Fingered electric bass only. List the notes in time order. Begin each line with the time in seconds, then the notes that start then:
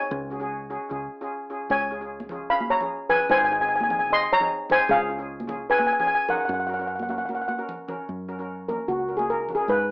0.11 C#2
0.91 C#2
1.70 C#2
2.50 G#1
3.29 G#1
4.10 D#2
4.89 C#2
5.69 G#1
6.49 F#2
7.29 C#2
8.09 F#2
8.88 C#2
9.68 G#2